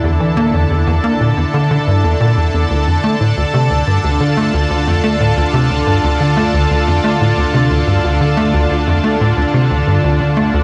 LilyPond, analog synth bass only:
\new Staff \with { instrumentName = "Analog synth bass" } { \clef bass \time 4/4 \key d \minor \tempo 4 = 90 e,16 e16 bes16 e,16 e,16 e,16 bes16 bes,16 e,16 d16 d16 g,16 e,16 bes,16 e,16 e,16 | d,16 f,16 a16 a,16 d,16 c16 d,16 g,16 d,16 d16 a16 d,16 d,16 f,16 a16 a,16 | d,16 c16 d,16 g,16 d,16 d16 a16 d,16 d,16 f,16 a16 a,16 d,16 c16 d,16 g,16 | d,16 d16 a16 d,16 d,16 f,16 a16 a,16 d,16 c16 d,16 g,16 d,16 d16 a16 d,16 | }